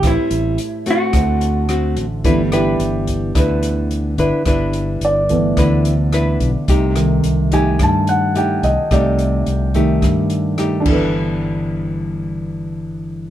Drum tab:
CC |--------|--------|--------|--------|
HH |xxxxxxxx|xxxxxxxx|xxxxxxxx|xxxxxxxx|
SD |r---r-r-|-r--r---|r---r-r-|-r--r---|
BD |o---o---|o--oo--o|o--oo--o|o--oo--o|

CC |-------x|--------|
HH |xxxxxxx-|--------|
SD |r---r-r-|--------|
BD |o--oo--o|--------|